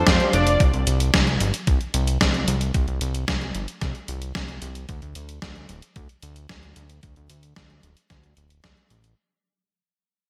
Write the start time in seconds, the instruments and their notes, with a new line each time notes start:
Already playing: lead electric guitar C5
0.07 analog synth bass F2, analog polysynth D4 F4 G4, kick, snare, closed hi-hat
0.20 closed hi-hat
0.33 analog synth bass F1, analog polysynth D4 F4 D5, lead electric guitar D5, closed hi-hat
0.47 closed hi-hat
0.60 analog synth bass C2, kick, closed hi-hat
0.74 analog synth bass C2, closed hi-hat
0.87 analog synth bass C2, closed hi-hat
1.00 closed hi-hat
1.14 analog synth bass C2, kick, snare, closed hi-hat
1.27 closed hi-hat
1.41 analog synth bass G1, closed hi-hat
1.54 closed hi-hat
1.67 analog synth bass C2, kick, closed hi-hat
1.81 closed hi-hat
1.94 analog synth bass C2, closed hi-hat
2.07 closed hi-hat
2.21 analog synth bass C2, kick, snare, closed hi-hat
2.34 closed hi-hat
2.48 analog synth bass C2, closed hi-hat
2.61 closed hi-hat
2.74 analog synth bass C2, kick, closed hi-hat
2.88 analog synth bass C2, closed hi-hat
3.01 analog synth bass C2, closed hi-hat
3.15 closed hi-hat
3.28 analog synth bass C2, kick, snare, closed hi-hat
3.41 closed hi-hat
3.55 analog synth bass G1, closed hi-hat
3.68 closed hi-hat
3.81 analog synth bass C2, kick, snare, closed hi-hat
3.95 closed hi-hat
4.08 analog synth bass C2, closed hi-hat
4.22 closed hi-hat
4.35 analog synth bass C2, kick, snare, closed hi-hat
4.48 closed hi-hat
4.62 analog synth bass C2, closed hi-hat
4.75 closed hi-hat
4.89 analog synth bass D2, kick, closed hi-hat
5.02 analog synth bass D2, closed hi-hat
5.15 analog synth bass D2, closed hi-hat
5.29 closed hi-hat
5.42 analog synth bass D2, kick, snare, closed hi-hat
5.56 closed hi-hat
5.69 analog synth bass D1, closed hi-hat
5.82 closed hi-hat
5.96 analog synth bass D2, kick, closed hi-hat
6.09 closed hi-hat
6.23 analog synth bass D2, closed hi-hat
6.36 closed hi-hat
6.49 analog synth bass D2, kick, snare, closed hi-hat
6.63 closed hi-hat
6.76 analog synth bass D2, closed hi-hat
6.90 closed hi-hat
7.03 analog synth bass D2, kick, closed hi-hat
7.16 analog synth bass D2, closed hi-hat
7.30 analog synth bass D2, closed hi-hat
7.43 closed hi-hat
7.56 analog synth bass D2, kick, snare, closed hi-hat
7.70 closed hi-hat
7.83 analog synth bass D1, closed hi-hat
7.97 closed hi-hat
8.10 analog synth bass D2, kick, snare, closed hi-hat
8.24 closed hi-hat
8.37 analog synth bass D1, closed hi-hat
8.50 closed hi-hat
8.64 analog synth bass D2, kick, snare, closed hi-hat
8.77 closed hi-hat
8.90 analog synth bass A1, closed hi-hat
9.04 closed hi-hat